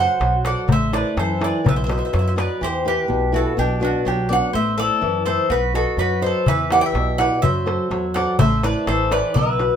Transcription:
Already playing: F#3 F#4 A4 C5 F#5
0.00 C5
0.20 B1 F#3, darbuka tek
0.45 F#4 A4 C5 D5 F#5, darbuka tek
0.68 A1 A3, darbuka dum
0.72 C5 E5
0.93 E4 A4 B4 C5 D5, darbuka tek
1.17 F#2 E3 A4 C5, darbuka tek
1.41 E4 A4 C5 D5, darbuka tek
1.45 B4
1.64 B1 B3, darbuka dum
1.69 B4 E5
1.76 C5 E5
1.84 C5 E5
1.89 F#4 B4 C5 D#5 E5, darbuka tek
1.98 C5 E5
2.05 C5 E5
2.13 F#2 F#3 C5 E5, darbuka tek
2.19 C5 E5
2.28 C5 E5
2.36 F#4 B4 D5 D#5, darbuka tek
2.61 E2 E3 G4 C5
2.85 E4 G4 B4
3.08 B1 B2
3.32 E4 F#4 G4 A4 B4
3.57 B1 B2 D4 G4
3.80 B3 D4 F#4
3.84 F#4
4.05 B1 F#3 D4 G4
4.29 B3 D4 F#4 D5 F#5
4.53 A1 A3 C5 E5
4.78 E4 A4 C5 D5
5.01 F#2 E3
5.26 E4 A4 C5
5.50 B1 B3 F#4 B4
5.74 F#4 A4 B4 D#5
5.97 F#2 F#3 F#4 B4
6.21 F#4 B4 C5 D#5
6.26 A4
6.46 E2 E3 B4 E5, darbuka dum
6.71 E4 G4 B4 D5 F#5, darbuka tek
6.81 G5
6.86 E5
6.94 B1 B2, darbuka tek
7.18 E4 G4 B4 D5 F#5, darbuka tek
7.42 F#2 F#3 C5 E5, darbuka dum
7.66 F#4 A4 C5, darbuka tek
7.91 E2 F#3, darbuka tek
8.14 F#4 A4 C5 D5 F#5, darbuka tek
8.39 A1 A3 C5 E5, darbuka dum
8.63 E4 A4 B4 C5 D5, darbuka tek
8.87 A1 E3 A4 C5, darbuka tek
9.11 E4 A4 B4 C5 D5, darbuka tek
9.34 B1 B3 B4 E5, darbuka dum
9.59 F#4 B4 F#5, darbuka tek
9.71 darbuka tek

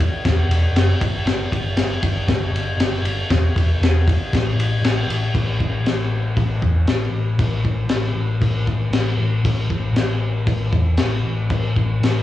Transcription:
0.00 kick, ride
0.25 E1, kick, snare, ride
0.47 E1, ride
0.73 F#1, ride
0.77 snare
1.00 G1, kick, ride
1.26 G1, snare, ride
1.51 G1, kick, ride
1.76 G1, snare, ride
2.02 G1, kick, ride
2.27 G1, kick, snare, ride
2.51 G1
2.56 ride
2.77 G1, snare, ride
3.02 G1, ride
3.30 E1, kick, snare, ride
3.55 E1, kick, ride
3.80 E1, snare, ride
4.08 kick, ride
4.33 A1, kick, snare, ride
4.55 A1
4.60 ride
4.81 A1, snare, ride
5.07 A1, ride
5.34 A1, kick, crash
5.60 A1, kick
5.84 A1, snare, crash
6.37 A1, kick, crash
6.62 E2, kick
6.85 A1, snare, crash
7.09 A1
7.38 A1, kick, crash
7.64 A1, kick
7.87 A1, snare, crash
8.13 A1
8.41 A1, kick, crash
8.66 A1, kick
8.90 A1, snare, crash
9.18 A1
9.44 A1, kick, crash
9.70 A1, kick
9.93 A1, snare, crash
10.46 A1, kick, crash
10.73 E2, kick
10.97 A1, snare, crash
11.24 A1
11.50 A1, kick, crash
11.76 A1, kick
12.00 A1, snare, crash

